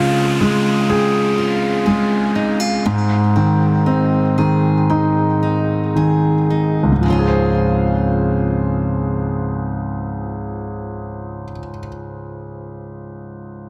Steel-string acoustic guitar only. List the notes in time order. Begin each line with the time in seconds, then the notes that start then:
Already playing: C#3 G#3 C4 F4
0.41 G#4
0.89 C4
1.38 F4
1.86 G#4
2.35 D#4
2.60 F4
2.86 G#2
3.36 C4
3.86 D#4
4.38 G#4
4.90 C4
5.43 D#4
5.96 G#4
6.50 D#4
7.03 C#3 G#3
7.08 C4 F4
7.12 G#4